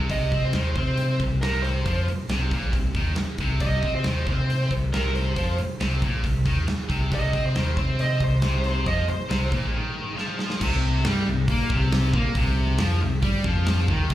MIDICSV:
0, 0, Header, 1, 7, 480
1, 0, Start_track
1, 0, Key_signature, -3, "minor"
1, 0, Tempo, 437637
1, 117, Time_signature, 4, 2, 24, 8
1, 15510, End_track
2, 0, Start_track
2, 0, Title_t, "Lead electric guitar"
2, 0, Program_c, 0, 29
2, 121, Note_on_c, 0, 75, 101
2, 491, Note_off_c, 0, 75, 0
2, 494, Note_on_c, 0, 72, 79
2, 819, Note_off_c, 0, 72, 0
2, 832, Note_on_c, 0, 72, 77
2, 1283, Note_off_c, 0, 72, 0
2, 1553, Note_on_c, 0, 70, 81
2, 1780, Note_off_c, 0, 70, 0
2, 1784, Note_on_c, 0, 72, 100
2, 2241, Note_off_c, 0, 72, 0
2, 3965, Note_on_c, 0, 75, 97
2, 4330, Note_off_c, 0, 75, 0
2, 4334, Note_on_c, 0, 72, 77
2, 4663, Note_off_c, 0, 72, 0
2, 4677, Note_on_c, 0, 72, 74
2, 5129, Note_off_c, 0, 72, 0
2, 5405, Note_on_c, 0, 70, 80
2, 5653, Note_on_c, 0, 72, 102
2, 5655, Note_off_c, 0, 70, 0
2, 6098, Note_off_c, 0, 72, 0
2, 7840, Note_on_c, 0, 75, 102
2, 8180, Note_off_c, 0, 75, 0
2, 8184, Note_on_c, 0, 72, 82
2, 8532, Note_off_c, 0, 72, 0
2, 8546, Note_on_c, 0, 72, 80
2, 8762, Note_off_c, 0, 72, 0
2, 8782, Note_on_c, 0, 75, 93
2, 9023, Note_off_c, 0, 75, 0
2, 9037, Note_on_c, 0, 72, 83
2, 9490, Note_off_c, 0, 72, 0
2, 9503, Note_on_c, 0, 72, 81
2, 9731, Note_off_c, 0, 72, 0
2, 9736, Note_on_c, 0, 75, 91
2, 9968, Note_off_c, 0, 75, 0
2, 9973, Note_on_c, 0, 72, 69
2, 10417, Note_off_c, 0, 72, 0
2, 15510, End_track
3, 0, Start_track
3, 0, Title_t, "Distorted electric guitar"
3, 0, Program_c, 1, 30
3, 117, Note_on_c, 1, 48, 96
3, 351, Note_off_c, 1, 48, 0
3, 365, Note_on_c, 1, 60, 91
3, 595, Note_off_c, 1, 60, 0
3, 610, Note_on_c, 1, 51, 89
3, 838, Note_off_c, 1, 51, 0
3, 851, Note_on_c, 1, 60, 95
3, 1320, Note_off_c, 1, 60, 0
3, 1346, Note_on_c, 1, 48, 68
3, 1526, Note_off_c, 1, 48, 0
3, 1573, Note_on_c, 1, 48, 90
3, 2042, Note_off_c, 1, 48, 0
3, 2048, Note_on_c, 1, 53, 94
3, 2279, Note_off_c, 1, 53, 0
3, 2537, Note_on_c, 1, 48, 96
3, 2764, Note_off_c, 1, 48, 0
3, 2783, Note_on_c, 1, 46, 86
3, 3007, Note_off_c, 1, 46, 0
3, 3022, Note_on_c, 1, 48, 66
3, 3206, Note_off_c, 1, 48, 0
3, 3250, Note_on_c, 1, 51, 95
3, 3482, Note_off_c, 1, 51, 0
3, 3738, Note_on_c, 1, 48, 88
3, 3956, Note_off_c, 1, 48, 0
3, 3970, Note_on_c, 1, 48, 88
3, 4202, Note_off_c, 1, 48, 0
3, 4219, Note_on_c, 1, 60, 84
3, 4446, Note_off_c, 1, 60, 0
3, 4461, Note_on_c, 1, 51, 92
3, 4688, Note_off_c, 1, 51, 0
3, 4693, Note_on_c, 1, 60, 91
3, 5164, Note_off_c, 1, 60, 0
3, 5177, Note_on_c, 1, 48, 68
3, 5365, Note_off_c, 1, 48, 0
3, 5420, Note_on_c, 1, 48, 88
3, 5883, Note_off_c, 1, 48, 0
3, 5888, Note_on_c, 1, 53, 92
3, 6122, Note_off_c, 1, 53, 0
3, 6375, Note_on_c, 1, 48, 92
3, 6606, Note_off_c, 1, 48, 0
3, 6620, Note_on_c, 1, 46, 94
3, 6848, Note_off_c, 1, 46, 0
3, 6863, Note_on_c, 1, 48, 65
3, 7049, Note_off_c, 1, 48, 0
3, 7085, Note_on_c, 1, 51, 97
3, 7315, Note_off_c, 1, 51, 0
3, 7557, Note_on_c, 1, 48, 98
3, 7796, Note_off_c, 1, 48, 0
3, 7808, Note_on_c, 1, 48, 94
3, 8042, Note_off_c, 1, 48, 0
3, 8042, Note_on_c, 1, 60, 94
3, 8279, Note_off_c, 1, 60, 0
3, 8286, Note_on_c, 1, 51, 92
3, 8521, Note_off_c, 1, 51, 0
3, 8526, Note_on_c, 1, 60, 92
3, 9001, Note_off_c, 1, 60, 0
3, 9013, Note_on_c, 1, 48, 69
3, 9203, Note_off_c, 1, 48, 0
3, 9243, Note_on_c, 1, 48, 96
3, 9719, Note_off_c, 1, 48, 0
3, 9730, Note_on_c, 1, 53, 94
3, 9963, Note_off_c, 1, 53, 0
3, 10198, Note_on_c, 1, 48, 92
3, 10431, Note_off_c, 1, 48, 0
3, 10435, Note_on_c, 1, 46, 93
3, 10674, Note_off_c, 1, 46, 0
3, 10686, Note_on_c, 1, 51, 97
3, 11152, Note_off_c, 1, 51, 0
3, 11156, Note_on_c, 1, 53, 90
3, 11633, Note_off_c, 1, 53, 0
3, 11648, Note_on_c, 1, 48, 96
3, 12119, Note_off_c, 1, 48, 0
3, 12133, Note_on_c, 1, 55, 101
3, 12361, Note_off_c, 1, 55, 0
3, 12373, Note_on_c, 1, 48, 73
3, 12560, Note_off_c, 1, 48, 0
3, 12620, Note_on_c, 1, 58, 108
3, 12844, Note_off_c, 1, 58, 0
3, 12847, Note_on_c, 1, 48, 102
3, 13315, Note_on_c, 1, 58, 102
3, 13316, Note_off_c, 1, 48, 0
3, 13550, Note_off_c, 1, 58, 0
3, 13559, Note_on_c, 1, 48, 107
3, 14031, Note_off_c, 1, 48, 0
3, 14036, Note_on_c, 1, 53, 100
3, 14269, Note_off_c, 1, 53, 0
3, 14284, Note_on_c, 1, 48, 72
3, 14473, Note_off_c, 1, 48, 0
3, 14512, Note_on_c, 1, 55, 108
3, 14747, Note_off_c, 1, 55, 0
3, 14768, Note_on_c, 1, 53, 106
3, 15234, Note_off_c, 1, 53, 0
3, 15250, Note_on_c, 1, 51, 104
3, 15475, Note_off_c, 1, 51, 0
3, 15510, End_track
4, 0, Start_track
4, 0, Title_t, "Picked electric bass"
4, 0, Program_c, 2, 34
4, 102, Note_on_c, 2, 36, 82
4, 333, Note_off_c, 2, 36, 0
4, 345, Note_on_c, 2, 48, 89
4, 575, Note_off_c, 2, 48, 0
4, 588, Note_on_c, 2, 39, 94
4, 817, Note_off_c, 2, 39, 0
4, 828, Note_on_c, 2, 48, 82
4, 1281, Note_off_c, 2, 48, 0
4, 1311, Note_on_c, 2, 36, 69
4, 1539, Note_off_c, 2, 36, 0
4, 1547, Note_on_c, 2, 36, 82
4, 2002, Note_off_c, 2, 36, 0
4, 2040, Note_on_c, 2, 41, 87
4, 2265, Note_off_c, 2, 41, 0
4, 2510, Note_on_c, 2, 36, 84
4, 2741, Note_off_c, 2, 36, 0
4, 2755, Note_on_c, 2, 34, 78
4, 2983, Note_off_c, 2, 34, 0
4, 2999, Note_on_c, 2, 36, 71
4, 3226, Note_off_c, 2, 36, 0
4, 3230, Note_on_c, 2, 39, 83
4, 3461, Note_off_c, 2, 39, 0
4, 3710, Note_on_c, 2, 36, 88
4, 3942, Note_off_c, 2, 36, 0
4, 3955, Note_on_c, 2, 36, 84
4, 4184, Note_off_c, 2, 36, 0
4, 4193, Note_on_c, 2, 48, 82
4, 4423, Note_off_c, 2, 48, 0
4, 4453, Note_on_c, 2, 39, 82
4, 4674, Note_off_c, 2, 39, 0
4, 4680, Note_on_c, 2, 48, 80
4, 5131, Note_off_c, 2, 48, 0
4, 5161, Note_on_c, 2, 36, 74
4, 5388, Note_off_c, 2, 36, 0
4, 5409, Note_on_c, 2, 36, 89
4, 5856, Note_off_c, 2, 36, 0
4, 5880, Note_on_c, 2, 41, 86
4, 6108, Note_off_c, 2, 41, 0
4, 6372, Note_on_c, 2, 36, 87
4, 6594, Note_off_c, 2, 36, 0
4, 6604, Note_on_c, 2, 34, 81
4, 6830, Note_off_c, 2, 34, 0
4, 6840, Note_on_c, 2, 36, 78
4, 7068, Note_off_c, 2, 36, 0
4, 7074, Note_on_c, 2, 39, 90
4, 7305, Note_off_c, 2, 39, 0
4, 7565, Note_on_c, 2, 36, 87
4, 7791, Note_off_c, 2, 36, 0
4, 7804, Note_on_c, 2, 36, 89
4, 8030, Note_off_c, 2, 36, 0
4, 8043, Note_on_c, 2, 48, 91
4, 8270, Note_off_c, 2, 48, 0
4, 8298, Note_on_c, 2, 39, 86
4, 8517, Note_off_c, 2, 39, 0
4, 8523, Note_on_c, 2, 48, 77
4, 8973, Note_off_c, 2, 48, 0
4, 8999, Note_on_c, 2, 36, 75
4, 9227, Note_off_c, 2, 36, 0
4, 9246, Note_on_c, 2, 36, 83
4, 9694, Note_off_c, 2, 36, 0
4, 9722, Note_on_c, 2, 41, 84
4, 9948, Note_off_c, 2, 41, 0
4, 10210, Note_on_c, 2, 36, 86
4, 10432, Note_off_c, 2, 36, 0
4, 10439, Note_on_c, 2, 34, 81
4, 10666, Note_off_c, 2, 34, 0
4, 11635, Note_on_c, 2, 36, 95
4, 12086, Note_off_c, 2, 36, 0
4, 12122, Note_on_c, 2, 43, 94
4, 12346, Note_off_c, 2, 43, 0
4, 12369, Note_on_c, 2, 36, 77
4, 12579, Note_off_c, 2, 36, 0
4, 12585, Note_on_c, 2, 46, 92
4, 12816, Note_off_c, 2, 46, 0
4, 12835, Note_on_c, 2, 36, 90
4, 13284, Note_off_c, 2, 36, 0
4, 13314, Note_on_c, 2, 46, 92
4, 13533, Note_off_c, 2, 46, 0
4, 13540, Note_on_c, 2, 36, 96
4, 13994, Note_off_c, 2, 36, 0
4, 14038, Note_on_c, 2, 41, 98
4, 14261, Note_off_c, 2, 41, 0
4, 14274, Note_on_c, 2, 36, 74
4, 14498, Note_off_c, 2, 36, 0
4, 14504, Note_on_c, 2, 43, 98
4, 14733, Note_off_c, 2, 43, 0
4, 14741, Note_on_c, 2, 41, 98
4, 15194, Note_off_c, 2, 41, 0
4, 15226, Note_on_c, 2, 39, 99
4, 15453, Note_off_c, 2, 39, 0
4, 15468, Note_on_c, 2, 36, 99
4, 15510, Note_off_c, 2, 36, 0
4, 15510, End_track
5, 0, Start_track
5, 0, Title_t, "Muted distorted electric guitar strokes"
5, 2302, Note_on_c, 9, 29, 51
5, 2412, Note_off_c, 9, 29, 0
5, 3498, Note_on_c, 9, 29, 51
5, 3608, Note_off_c, 9, 29, 0
5, 6139, Note_on_c, 9, 29, 54
5, 6249, Note_off_c, 9, 29, 0
5, 7319, Note_on_c, 9, 29, 51
5, 7429, Note_off_c, 9, 29, 0
5, 9974, Note_on_c, 9, 29, 50
5, 10084, Note_off_c, 9, 29, 0
5, 15510, End_track
6, 0, Start_track
6, 0, Title_t, "Muted picked electric bass strokes"
6, 2270, Note_on_c, 9, 29, 38
6, 2380, Note_off_c, 9, 29, 0
6, 3481, Note_on_c, 9, 29, 33
6, 3591, Note_off_c, 9, 29, 0
6, 6134, Note_on_c, 9, 29, 37
6, 6244, Note_off_c, 9, 29, 0
6, 7333, Note_on_c, 9, 29, 36
6, 7442, Note_off_c, 9, 29, 0
6, 9981, Note_on_c, 9, 29, 39
6, 10091, Note_off_c, 9, 29, 0
6, 15510, End_track
7, 0, Start_track
7, 0, Title_t, "Drums"
7, 105, Note_on_c, 9, 36, 92
7, 112, Note_on_c, 9, 46, 69
7, 215, Note_off_c, 9, 36, 0
7, 222, Note_off_c, 9, 46, 0
7, 349, Note_on_c, 9, 36, 89
7, 352, Note_on_c, 9, 46, 48
7, 458, Note_off_c, 9, 36, 0
7, 461, Note_off_c, 9, 46, 0
7, 580, Note_on_c, 9, 46, 66
7, 584, Note_on_c, 9, 38, 104
7, 690, Note_off_c, 9, 46, 0
7, 694, Note_off_c, 9, 38, 0
7, 830, Note_on_c, 9, 36, 94
7, 835, Note_on_c, 9, 46, 50
7, 939, Note_off_c, 9, 36, 0
7, 945, Note_off_c, 9, 46, 0
7, 1069, Note_on_c, 9, 46, 62
7, 1178, Note_off_c, 9, 46, 0
7, 1314, Note_on_c, 9, 36, 89
7, 1322, Note_on_c, 9, 46, 49
7, 1424, Note_off_c, 9, 36, 0
7, 1431, Note_off_c, 9, 46, 0
7, 1563, Note_on_c, 9, 46, 68
7, 1567, Note_on_c, 9, 38, 102
7, 1673, Note_off_c, 9, 46, 0
7, 1677, Note_off_c, 9, 38, 0
7, 1805, Note_on_c, 9, 46, 52
7, 1914, Note_off_c, 9, 46, 0
7, 2038, Note_on_c, 9, 36, 96
7, 2040, Note_on_c, 9, 46, 69
7, 2147, Note_off_c, 9, 36, 0
7, 2149, Note_off_c, 9, 46, 0
7, 2284, Note_on_c, 9, 46, 49
7, 2393, Note_off_c, 9, 46, 0
7, 2514, Note_on_c, 9, 46, 70
7, 2518, Note_on_c, 9, 38, 101
7, 2624, Note_off_c, 9, 46, 0
7, 2628, Note_off_c, 9, 38, 0
7, 2757, Note_on_c, 9, 36, 98
7, 2761, Note_on_c, 9, 46, 55
7, 2867, Note_off_c, 9, 36, 0
7, 2871, Note_off_c, 9, 46, 0
7, 2994, Note_on_c, 9, 36, 80
7, 2997, Note_on_c, 9, 46, 70
7, 3104, Note_off_c, 9, 36, 0
7, 3107, Note_off_c, 9, 46, 0
7, 3232, Note_on_c, 9, 46, 53
7, 3233, Note_on_c, 9, 36, 93
7, 3342, Note_off_c, 9, 46, 0
7, 3343, Note_off_c, 9, 36, 0
7, 3464, Note_on_c, 9, 46, 72
7, 3468, Note_on_c, 9, 38, 107
7, 3573, Note_off_c, 9, 46, 0
7, 3578, Note_off_c, 9, 38, 0
7, 3708, Note_on_c, 9, 46, 51
7, 3713, Note_on_c, 9, 36, 94
7, 3818, Note_off_c, 9, 46, 0
7, 3823, Note_off_c, 9, 36, 0
7, 3950, Note_on_c, 9, 46, 69
7, 3954, Note_on_c, 9, 36, 96
7, 4060, Note_off_c, 9, 46, 0
7, 4064, Note_off_c, 9, 36, 0
7, 4198, Note_on_c, 9, 36, 92
7, 4204, Note_on_c, 9, 46, 47
7, 4308, Note_off_c, 9, 36, 0
7, 4314, Note_off_c, 9, 46, 0
7, 4431, Note_on_c, 9, 46, 67
7, 4435, Note_on_c, 9, 38, 102
7, 4540, Note_off_c, 9, 46, 0
7, 4545, Note_off_c, 9, 38, 0
7, 4680, Note_on_c, 9, 36, 101
7, 4682, Note_on_c, 9, 46, 48
7, 4790, Note_off_c, 9, 36, 0
7, 4791, Note_off_c, 9, 46, 0
7, 4935, Note_on_c, 9, 46, 62
7, 5045, Note_off_c, 9, 46, 0
7, 5164, Note_on_c, 9, 36, 85
7, 5174, Note_on_c, 9, 46, 48
7, 5274, Note_off_c, 9, 36, 0
7, 5284, Note_off_c, 9, 46, 0
7, 5413, Note_on_c, 9, 46, 68
7, 5417, Note_on_c, 9, 38, 105
7, 5523, Note_off_c, 9, 46, 0
7, 5527, Note_off_c, 9, 38, 0
7, 5651, Note_on_c, 9, 46, 47
7, 5761, Note_off_c, 9, 46, 0
7, 5883, Note_on_c, 9, 36, 96
7, 5884, Note_on_c, 9, 46, 68
7, 5993, Note_off_c, 9, 36, 0
7, 5993, Note_off_c, 9, 46, 0
7, 6124, Note_on_c, 9, 46, 48
7, 6234, Note_off_c, 9, 46, 0
7, 6367, Note_on_c, 9, 46, 71
7, 6371, Note_on_c, 9, 38, 102
7, 6476, Note_off_c, 9, 46, 0
7, 6481, Note_off_c, 9, 38, 0
7, 6604, Note_on_c, 9, 36, 97
7, 6610, Note_on_c, 9, 46, 51
7, 6714, Note_off_c, 9, 36, 0
7, 6720, Note_off_c, 9, 46, 0
7, 6843, Note_on_c, 9, 36, 81
7, 6846, Note_on_c, 9, 46, 72
7, 6952, Note_off_c, 9, 36, 0
7, 6956, Note_off_c, 9, 46, 0
7, 7081, Note_on_c, 9, 36, 96
7, 7089, Note_on_c, 9, 46, 55
7, 7191, Note_off_c, 9, 36, 0
7, 7199, Note_off_c, 9, 46, 0
7, 7322, Note_on_c, 9, 46, 73
7, 7327, Note_on_c, 9, 38, 106
7, 7432, Note_off_c, 9, 46, 0
7, 7437, Note_off_c, 9, 38, 0
7, 7565, Note_on_c, 9, 36, 94
7, 7576, Note_on_c, 9, 46, 53
7, 7675, Note_off_c, 9, 36, 0
7, 7686, Note_off_c, 9, 46, 0
7, 7806, Note_on_c, 9, 36, 97
7, 7817, Note_on_c, 9, 46, 75
7, 7916, Note_off_c, 9, 36, 0
7, 7926, Note_off_c, 9, 46, 0
7, 8044, Note_on_c, 9, 36, 97
7, 8050, Note_on_c, 9, 46, 49
7, 8154, Note_off_c, 9, 36, 0
7, 8160, Note_off_c, 9, 46, 0
7, 8286, Note_on_c, 9, 46, 66
7, 8291, Note_on_c, 9, 38, 103
7, 8396, Note_off_c, 9, 46, 0
7, 8400, Note_off_c, 9, 38, 0
7, 8522, Note_on_c, 9, 36, 102
7, 8525, Note_on_c, 9, 46, 48
7, 8632, Note_off_c, 9, 36, 0
7, 8635, Note_off_c, 9, 46, 0
7, 8763, Note_on_c, 9, 46, 66
7, 8873, Note_off_c, 9, 46, 0
7, 8996, Note_on_c, 9, 46, 51
7, 8999, Note_on_c, 9, 36, 84
7, 9106, Note_off_c, 9, 46, 0
7, 9109, Note_off_c, 9, 36, 0
7, 9234, Note_on_c, 9, 46, 68
7, 9238, Note_on_c, 9, 38, 109
7, 9343, Note_off_c, 9, 46, 0
7, 9348, Note_off_c, 9, 38, 0
7, 9477, Note_on_c, 9, 46, 46
7, 9587, Note_off_c, 9, 46, 0
7, 9722, Note_on_c, 9, 36, 103
7, 9727, Note_on_c, 9, 46, 67
7, 9832, Note_off_c, 9, 36, 0
7, 9836, Note_off_c, 9, 46, 0
7, 9964, Note_on_c, 9, 46, 49
7, 10074, Note_off_c, 9, 46, 0
7, 10206, Note_on_c, 9, 46, 69
7, 10210, Note_on_c, 9, 38, 101
7, 10316, Note_off_c, 9, 46, 0
7, 10320, Note_off_c, 9, 38, 0
7, 10441, Note_on_c, 9, 36, 96
7, 10442, Note_on_c, 9, 46, 50
7, 10551, Note_off_c, 9, 36, 0
7, 10551, Note_off_c, 9, 46, 0
7, 11169, Note_on_c, 9, 38, 53
7, 11279, Note_off_c, 9, 38, 0
7, 11397, Note_on_c, 9, 38, 78
7, 11506, Note_off_c, 9, 38, 0
7, 11517, Note_on_c, 9, 38, 78
7, 11627, Note_off_c, 9, 38, 0
7, 11639, Note_on_c, 9, 36, 103
7, 11639, Note_on_c, 9, 49, 115
7, 11749, Note_off_c, 9, 36, 0
7, 11749, Note_off_c, 9, 49, 0
7, 12114, Note_on_c, 9, 46, 57
7, 12118, Note_on_c, 9, 38, 116
7, 12223, Note_off_c, 9, 46, 0
7, 12228, Note_off_c, 9, 38, 0
7, 12592, Note_on_c, 9, 36, 102
7, 12592, Note_on_c, 9, 46, 59
7, 12702, Note_off_c, 9, 36, 0
7, 12702, Note_off_c, 9, 46, 0
7, 12832, Note_on_c, 9, 36, 106
7, 12942, Note_off_c, 9, 36, 0
7, 13075, Note_on_c, 9, 46, 57
7, 13080, Note_on_c, 9, 38, 119
7, 13185, Note_off_c, 9, 46, 0
7, 13190, Note_off_c, 9, 38, 0
7, 13310, Note_on_c, 9, 36, 102
7, 13420, Note_off_c, 9, 36, 0
7, 13547, Note_on_c, 9, 36, 105
7, 13547, Note_on_c, 9, 46, 63
7, 13657, Note_off_c, 9, 36, 0
7, 13657, Note_off_c, 9, 46, 0
7, 14019, Note_on_c, 9, 46, 58
7, 14023, Note_on_c, 9, 38, 109
7, 14129, Note_off_c, 9, 46, 0
7, 14133, Note_off_c, 9, 38, 0
7, 14505, Note_on_c, 9, 46, 61
7, 14506, Note_on_c, 9, 36, 101
7, 14615, Note_off_c, 9, 46, 0
7, 14616, Note_off_c, 9, 36, 0
7, 14745, Note_on_c, 9, 36, 110
7, 14855, Note_off_c, 9, 36, 0
7, 14986, Note_on_c, 9, 46, 63
7, 14990, Note_on_c, 9, 38, 110
7, 15095, Note_off_c, 9, 46, 0
7, 15100, Note_off_c, 9, 38, 0
7, 15227, Note_on_c, 9, 36, 102
7, 15337, Note_off_c, 9, 36, 0
7, 15463, Note_on_c, 9, 49, 98
7, 15468, Note_on_c, 9, 36, 108
7, 15510, Note_off_c, 9, 36, 0
7, 15510, Note_off_c, 9, 49, 0
7, 15510, End_track
0, 0, End_of_file